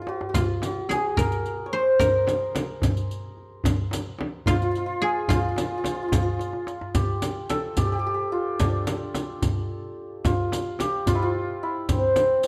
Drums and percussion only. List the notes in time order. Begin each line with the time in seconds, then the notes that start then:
0.07 tombak tek
0.21 tombak ka
0.34 riq, tombak dum, frame drum
0.62 riq, tombak tek, frame drum
0.89 riq, tombak tek, frame drum
1.17 riq, tombak dum, frame drum
1.30 riq, tombak ka
1.46 riq
1.72 tombak ka
2.00 riq, tombak dum, frame drum
2.27 riq, tombak tek, frame drum
2.55 riq, tombak tek, frame drum
2.82 riq, tombak dum, frame drum
2.95 riq, tombak ka
3.11 riq
3.37 tombak ka
3.64 riq, tombak dum, frame drum
3.91 riq, tombak tek, frame drum
4.19 tombak tek, frame drum
4.46 riq, tombak dum, frame drum
4.60 riq, tombak ka
4.75 riq
5.01 tombak ka
5.28 riq, tombak dum, frame drum
5.56 riq, tombak tek, frame drum
5.84 riq, tombak tek, frame drum
6.12 riq, tombak dum, frame drum
6.26 tombak ka
6.39 riq, tombak tek
6.53 tombak ka
6.67 riq, tombak tek
6.81 tombak ka
6.95 riq, frame drum, tombak dum
7.22 riq, tombak tek, frame drum
7.50 riq, tombak tek, frame drum
7.77 riq, frame drum, tombak dum
7.92 tombak ka
8.06 tombak ka
8.60 riq, frame drum, tombak dum
8.87 riq, tombak tek, frame drum
9.15 riq, tombak tek, frame drum
9.42 riq, tombak dum, frame drum
9.56 tombak ka
9.70 tombak ka
10.25 riq, frame drum, tombak dum
10.52 riq, tombak tek, frame drum
10.79 riq, tombak tek, frame drum
11.07 riq, tombak dum, frame drum
11.21 tombak ka
11.35 tombak ka
11.89 riq, frame drum, tombak dum
12.16 riq, tombak tek, frame drum
12.43 riq, tombak tek